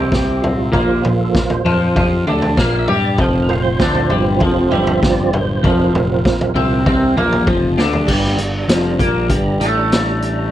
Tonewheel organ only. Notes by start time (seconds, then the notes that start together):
Already playing: G4
0.41 F4
0.73 F3 A#3 F4
0.91 G4
1.21 A4
1.36 A#4
1.52 C5
2.57 F5
2.79 E5
3.00 D5
3.20 C5
3.43 A#4
3.48 F3 C4 F4
3.63 C5
4.72 E5
5.03 F3 C4 F4 D5
5.34 C5
5.65 F3 C4 F4 A#4
6.55 F3 C4 F4
8.06 G3 D4 A#5